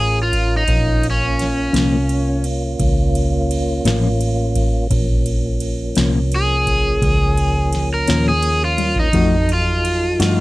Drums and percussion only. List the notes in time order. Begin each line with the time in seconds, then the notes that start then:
0.33 kick, ride
0.68 kick, ride
1.03 ride
1.39 snare, ride
1.74 snare, ride
2.09 ride
2.44 ride
2.80 kick, ride
3.15 ride
3.51 ride
3.85 snare, ride
4.21 ride
4.55 kick, ride
4.91 kick, ride
5.26 ride
5.60 ride
5.95 snare, ride
6.32 ride
6.67 kick, ride
7.02 kick, ride
7.37 ride
7.73 snare, ride
8.08 snare, ride
8.43 ride
8.78 high tom, ride
8.96 kick
9.13 kick, ride
9.49 ride
9.85 ride
10.20 snare, ride